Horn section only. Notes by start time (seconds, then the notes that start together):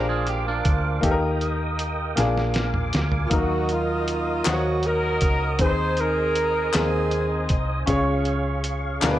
3.34 A#3 D#4 F#4
3.72 A#3 F4
4.48 F#4
4.87 D#4 F#4 A#4
5.64 D#4 G#4 C5
6.00 D#4 A#4
6.78 C4 D#4 G#4